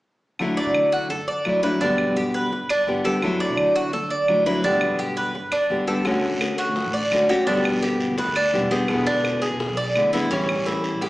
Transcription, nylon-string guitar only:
0.39 D3 F#3 A3 D4 E4
1.10 muted nylon-string guitar stroke
1.45 F#3 A3 D4 E4
1.63 F#3 A3 D4 E4
1.80 B2 D3 G3 B3 G4
2.52 muted nylon-string guitar stroke
2.87 D3 G3 B3 G4
3.04 D3 G3 B3 G4
3.22 D3 F#3 A3 D4 E4
3.93 muted nylon-string guitar stroke
4.28 F#3 A3 D4 E4
4.46 F#3 A3 D4 E4
4.63 B2 D3 G3 B3 G4
5.34 muted nylon-string guitar stroke
5.69 D3 G3 B3 G4
5.87 D3 G3 B3 G4
6.04 D3 A3 C#4 F#4
6.76 muted nylon-string guitar stroke
7.12 D3 A3 C#4 F#4
7.29 A3 C#4 F#4
7.47 B2 D3 G3 B3 G4
8.18 muted nylon-string guitar stroke
8.53 D3 G3 B3 G4
8.71 D3 G3 B3 G4
8.88 B2 D3 G#3 B3 E4
9.60 muted nylon-string guitar stroke
9.96 D3 G#3 B3 E4
10.13 D3 G#3 B3 E4
10.31 E3 G3 C#4 E4
11.02 muted nylon-string guitar stroke

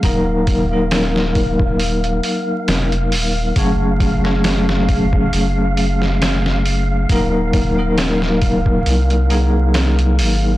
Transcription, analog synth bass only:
0.03 D#1
2.68 F1
3.13 D#1
3.56 F#1
5.34 F#1
7.10 D#1
8.87 C2
10.19 G#1

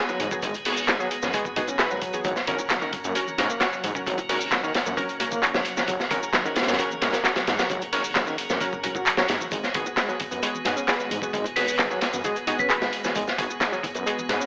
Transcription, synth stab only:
Already playing: B3 F#4 B4
0.32 B3 F#4 G#4
0.66 B3 F#4 G#4
1.00 B3 F#4 G#4
1.34 B3 F#4 G#4
1.56 B3 F#4 G#4
1.79 B3 F#4 B4
2.13 B3 F#4 G#4
2.47 C#4 F#4 A#4
2.81 C#4 F#4 A#4
3.15 C#4 F#4 A#4
3.38 C#4 F#4 A#4
3.61 C#4 F#4 C#5
3.95 C#4 F#4 A#4
4.29 C#4 F#4 A#4
4.64 C#4 F#4 A#4
4.97 C#4 F#4 A#4
5.20 C#4 F#4 A#4
5.43 C#4 F#4 C#5
5.77 C#4 F#4 A#4
6.10 C#4 F#4 A#4
6.45 C#4 F#4 A#4
6.79 C#4 F#4 A#4
7.02 C#4 F#4 A#4
7.25 C#4 F#4 C#5
7.59 C#4 F#4 A#4
7.92 C#4 F#4 A#4
8.27 C#4 F#4 A#4
8.61 C#4 F#4 A#4
8.83 C#4 F#4 A#4
9.18 C#4 F#4 A#4
9.75 B3 F#4 G#4
10.09 B3 F#4 G#4
10.43 B3 F#4 G#4
10.66 B3 F#4 G#4
10.88 B3 F#4 B4
11.23 B3 F#4 G#4
11.56 B3 F#4 G#4
11.91 B3 F#4 G#4
12.24 B3 F#4 G#4
12.48 B3 F#4 G#4
12.70 B3 F#4 B4
13.04 B3 F#4 G#4
13.38 B3 F#4 G#4
13.72 B3 F#4 G#4
14.06 B3 F#4 G#4
14.29 B3 F#4 G#4

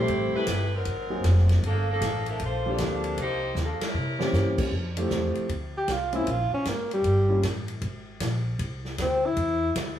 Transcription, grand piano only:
Already playing: G3 A3 C4 E4 G4
1.10 F#3 A#3 C4 D#4 G#4
2.66 F3 A#3 C4 D4 G4
4.19 E3 A#3 C4 C#4 G4
4.97 F3 A3 C4 E4 G4
6.13 G#3 A#3 C4 C#4 F4
7.29 G3 A#3 C#4 D#4 F4

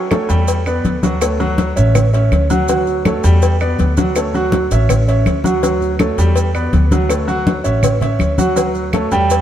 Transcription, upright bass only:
0.30 E2
0.85 D2
1.77 A1
2.32 D2
3.24 E2
3.80 D2
4.71 A1
5.26 D2
6.18 E2
6.73 D2
7.65 A1
8.20 D2
9.12 E2

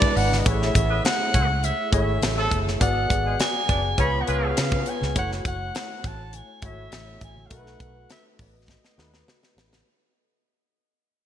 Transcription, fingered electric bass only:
0.16 G#1
0.46 A1
0.75 A1
1.34 C#2
1.93 G#1
2.23 A1
2.52 F#1
2.81 G#1
3.11 G#1
3.69 F#1
3.98 C#2
4.28 C#2
4.58 C#3
5.02 C#2
5.16 F#1
5.45 F#1
6.04 A1
6.63 G#1
6.92 A1
7.21 A1
7.51 B1
7.80 B1
8.39 A1
8.98 D#2
9.57 A1

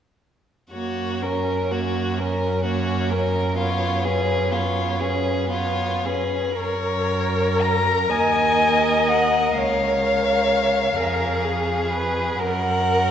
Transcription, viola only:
0.72 A#3
1.23 C#4
1.72 A#3
2.20 C#4
2.66 A#3
3.13 C#4
3.58 B3
4.05 C#4
4.51 B3
5.01 C#4
5.51 B3
6.06 C#4
6.59 A#4
8.10 D#5
9.58 C#5
10.98 A#4
11.45 G#4
11.92 B4
12.40 A#4

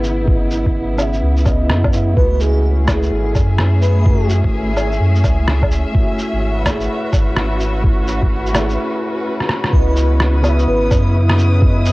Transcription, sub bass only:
Already playing: G#1
0.66 G#1
1.22 C#2
1.69 F#2
2.17 C#2
3.11 G#1
3.35 F#2
4.45 G#1
5.00 F#2
5.24 C#2
6.33 G#1
7.13 G#1
8.23 G#1
9.73 C#2
10.67 G#1
10.91 F#2

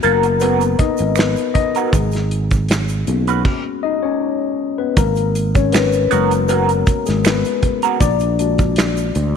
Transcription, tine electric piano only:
Already playing: A#3 B3 F#4
0.03 A#3 A#4
0.40 B3 B4
0.79 D#4 D#5
1.17 B3 B4
1.54 D#4 D#5
1.93 G#3 G#4
3.07 A#3 B3 C#4 F#4
3.83 D#4 D#5
4.03 C#4 C#5
4.78 B3 B4
4.97 A#3 A#4
5.55 C#4 C#5
5.73 B3 B4
6.11 G#3 B3 F#4
6.48 A#3 A#4
7.06 G#3 G#4
7.25 B3 B4
8.00 D4 D5
8.39 G#3 D4 F#4

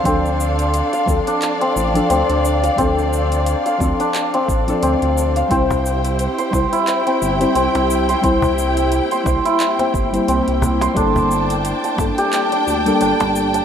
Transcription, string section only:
Already playing: D4 A4 F5
0.05 D5
5.50 E4 G4 C5 G5
8.23 A#3
10.96 D4 G5 A5

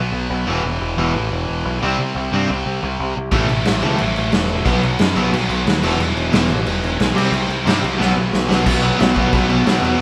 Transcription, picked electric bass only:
Already playing: B1
0.12 B1
0.30 B1
0.46 E1
0.63 E1
0.80 E1
0.97 E1
1.15 A1
1.31 E1
1.49 E1
1.65 B1
1.83 C2
1.99 C2
2.15 C2
2.33 G2
2.50 C2
2.66 C2
2.83 C2
3.00 C2
3.17 C2
3.32 A1
3.50 A1
3.68 A1
3.84 C#2
4.01 A1
4.17 A1
4.34 E1
4.66 B1
4.83 B1
5.00 F#2
5.16 B1
5.33 B1
5.49 B1
5.66 D#2
5.82 E1
5.98 E1
6.15 E1
6.33 E1
6.51 A1
6.66 E1
6.83 E1
7.00 B1
7.15 C2
7.31 C2
7.49 C2
7.66 G2
7.83 C2
8.00 B1
8.17 B1
8.33 B1
8.50 B1
8.66 B1
9.00 B1
9.33 B1
9.49 B1
9.66 B1
9.82 E2

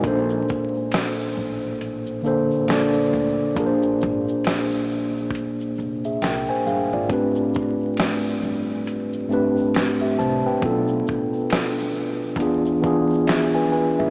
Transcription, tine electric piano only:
0.02 A#2 A#3 D4
0.06 A4 C5
2.22 D3 A#3 D4
2.26 A4 C5
2.66 A#2 A#3 D4
2.70 A4 D5
3.55 A#2 A#3 D4 G#4
3.60 A#4
3.66 C5
6.05 G#4 E5
6.22 A#4 G5
6.49 C5 G#5
6.66 G#4 F5
6.93 F4 D5
7.07 A2 A3 C4 D4
7.12 G4 B4
9.28 A2 A3 C4 D4
9.32 G4 B4
10.02 G4 E5
10.19 C5 A5
10.46 B4 G5
10.60 B2 B3 C#4
10.64 F4 A4
10.69 D4
12.37 E3 B3 D4 F4
12.42 G#4
12.81 E3 B3 D4
12.85 F4 G#4
13.27 G#4 E5
13.55 B4 G#5
13.72 B4 G#5
13.99 G#4 E5

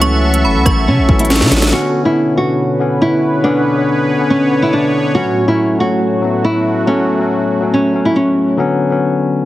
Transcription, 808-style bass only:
Already playing: C#2
0.44 G1
0.55 C#2
0.66 A1
0.87 C#3
0.98 A1
1.09 A1
1.41 C#3
1.52 A1

